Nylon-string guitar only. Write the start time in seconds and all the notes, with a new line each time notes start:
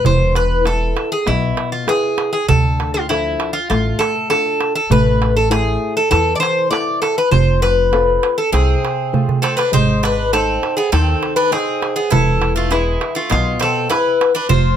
0.04 E3
0.65 E4 B4
1.26 B2
1.87 E4 G#4 B4
2.49 D3
3.10 F3 D4 A4
3.70 A3
4.30 D4 F4 A4
4.90 A3
5.50 A3 E4 C5
6.10 E3
6.70 E4 A4 C5
7.31 F3
7.92 C4 F4 A4
8.52 C3
9.13 A3 F4 C5
9.72 G#3
10.33 D#4 C5
10.93 D#3
11.51 D#4 G#4 C5
12.11 E3
12.71 E4 G#4 B4
13.30 B2
13.90 E4 G#4 B4
14.49 F3